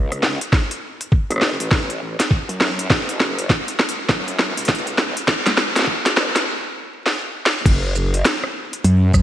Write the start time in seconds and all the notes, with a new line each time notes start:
Already playing: C#2
0.12 cross-stick, closed hi-hat
0.23 snare
0.41 closed hi-hat
0.53 kick, snare
0.71 closed hi-hat
1.01 closed hi-hat
1.12 kick
1.30 F#1, cross-stick, closed hi-hat
1.32 cross-stick
1.36 cross-stick
1.38 cross-stick
1.40 cross-stick, snare
1.60 A1, closed hi-hat
1.71 A1, kick, snare
1.90 closed hi-hat
2.20 snare, closed hi-hat
2.31 kick
2.49 F#2, closed hi-hat
2.61 snare
2.79 closed hi-hat
2.90 F#1, kick, snare
3.09 closed hi-hat
3.20 snare
3.39 closed hi-hat
3.50 kick, snare
3.68 closed hi-hat
3.79 snare
3.89 closed hi-hat
4.09 F#2, kick, snare
4.28 closed hi-hat
4.39 F#2, snare
4.57 C#2, closed hi-hat
4.65 kick, snare, closed hi-hat
4.69 closed hi-hat
4.75 closed hi-hat
4.78 closed hi-hat
4.87 closed hi-hat
4.98 snare
5.17 closed hi-hat
5.28 kick, snare
5.46 snare, closed hi-hat
5.57 snare
5.76 snare, closed hi-hat
5.79 snare
5.82 snare
5.85 kick, snare
6.06 F#1, snare, closed hi-hat
6.17 snare
6.35 A1, snare, closed hi-hat
7.06 snare
7.46 snare
7.66 F#1, kick, closed hi-hat, crash
7.95 shaker
8.14 closed hi-hat
8.25 snare, closed hi-hat
8.44 cross-stick
8.73 closed hi-hat
8.84 F#2, closed hi-hat
9.14 F#2, kick, cross-stick, shaker